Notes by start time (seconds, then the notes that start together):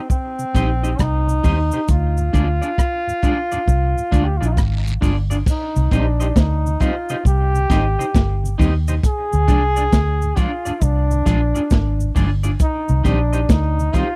Already playing: C4
0.10 C4, kick, cabasa
0.39 C3, cabasa
0.54 A#1 G3 C4 D#4 G4 C5 D#5, kick, closed hi-hat, cabasa
0.83 C4 D#4 G4 C5 D#5, cabasa
0.99 C2 D#4, kick, cross-stick, cabasa
1.28 C3, cabasa
1.43 D#2 G3 C4 D#4 G4 C5 D#5, kick, open hi-hat, cabasa
1.72 C3 D#4 G4 C5 D#5, cabasa
1.88 D2 F4, kick, hi-hat pedal, cabasa
2.17 D2 G#2, cabasa
2.33 D2 G#3 D4 F4 G#4 D5, kick, closed hi-hat, cabasa
2.62 D4 F4 G#4 D5, cabasa
2.78 kick, cross-stick, cabasa
3.07 D2 G#2, cabasa
3.22 G#3 D4 F4 G#4 D5, kick, closed hi-hat, cabasa
3.52 D2 G#2 D4 F4 G#4 D5, cabasa
3.68 C2, kick, cabasa
3.97 D2 G#2, cabasa
4.11 D2 G#3 D4 F4 G#4 D5, kick, closed hi-hat, cabasa
4.24 G4
4.37 F4 G#4 D5
4.41 A#1 D4 F4, cabasa
4.46 D#4
4.52 F4
4.57 G#1, kick, cross-stick, cabasa, long guiro
4.86 D2 G#2, cabasa
5.01 G1 G#3 D4 F4 G#4 D5, kick, open hi-hat, cabasa
5.30 D2 G#2 D4 F4 G#4 D5, cabasa
5.46 kick, crash, cabasa
5.50 D#4
5.76 C2 C3, cabasa
5.91 A#1 G3 C4 D4 D#4 G4 C5 D#5, kick, closed hi-hat, cabasa
6.20 D#4 G4 C5 D#5, cabasa
6.36 D2 D#4, kick, snare, cabasa
6.66 C3, cabasa
6.80 G3 C4 D#4 F4 G4 C5 D#5, kick, closed hi-hat, cabasa
7.09 C3 D#4 G4 C5 D#5, cabasa
7.25 C2 G4, kick, cabasa
7.54 C3, cabasa
7.70 G#1 G3 C4 D#4 G4 C5 D#5, kick, snare, closed hi-hat, cabasa
7.99 C3 D#4 G4 C5 D#5, cabasa
8.15 G1, kick, snare, cabasa
8.44 C3, cabasa
8.58 D#2 G3 C4 D#4 G4 C5 D#5, kick, open hi-hat, cabasa
8.88 C3 D#4 G4 C5 D#5, cabasa
9.03 G#4, kick, hi-hat pedal, cabasa
9.33 D2 G#2, cabasa
9.48 C2 F3 G#3 D4 F4 G#4 D5, kick, closed hi-hat, cabasa
9.76 D4 F4 G#4 D5, cabasa
9.93 D2, kick, snare, cabasa
10.22 D2 G#2, cabasa
10.36 F3 G#3 D4 F4 G#4 D5, kick, closed hi-hat, cabasa
10.65 D2 G#2 D4 F4 G#4 D5, cabasa
10.82 C2 D4, kick, cabasa
11.10 D2 G#2, cabasa
11.25 A#1 F3 G#3 D4 F4 G#4 D5, kick, closed hi-hat, cabasa
11.55 D2 G#2 D4 F4 G#4 D5, cabasa
11.70 G#1, kick, snare, cabasa
12.00 D2 G#2, cabasa
12.15 G1 F3 G#3 D4 F4 G#4 D5, kick, open hi-hat, cabasa
12.43 D2 G#2 D4 F4 G#4 D5, cabasa
12.60 D#4, kick, hi-hat pedal, cabasa
12.89 C2 C3, cabasa
13.04 A#1 D#3 G3 C4 D4 D#4 G4 C5 D#5, kick, closed hi-hat, cabasa
13.33 D#4 G4 C5 D#5, cabasa
13.49 D2 D#4, kick, snare, cabasa
13.78 C3, cabasa
13.93 D#3 G3 C4 D#4 F4 G4 C5 D#5, kick, closed hi-hat, cabasa